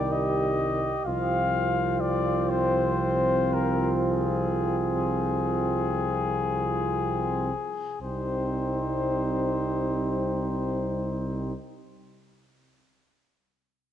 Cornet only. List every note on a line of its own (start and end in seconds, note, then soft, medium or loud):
0.00 0.13 D5 medium
0.12 1.05 D#5 medium
1.05 2.02 F5 medium
2.01 2.51 D5 medium
2.50 3.55 C5 medium
3.53 3.91 A#4 medium
4.07 7.98 G#4 medium
8.02 11.52 C5 soft